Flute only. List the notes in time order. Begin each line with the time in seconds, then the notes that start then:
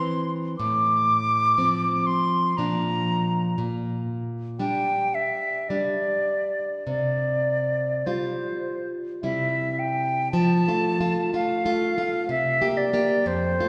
Already playing: C6
0.59 D6
2.06 C6
2.57 A#5
4.60 G5
5.15 E5
5.69 D5
6.88 D5
8.06 C5
9.23 E5
9.79 G5
10.32 A5
11.34 F5
12.30 E5
12.77 D5
13.27 C5